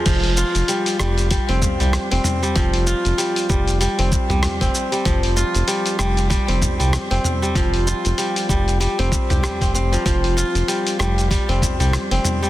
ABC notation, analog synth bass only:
X:1
M:4/4
L:1/16
Q:"Swing 16ths" 1/4=96
K:Cphr
V:1 name="Analog synth bass" clef=bass
F,,,2 z F,,, z2 F,,,2 z F,,, z C,, z F,,, z2 | F,,,2 z F,,, z2 F,,,2 z F,,, z C,, z F,,, z2 | F,,,2 z F,,, z2 F,,,2 z F,,, z C,, z F,,, z2 | F,,,2 z F,,, z2 F,,,2 z F,,, z C,, z F,,,2 z |
F,,,2 z F,,, z2 F,,,2 z F,,, z C,, z F,,, z2 |]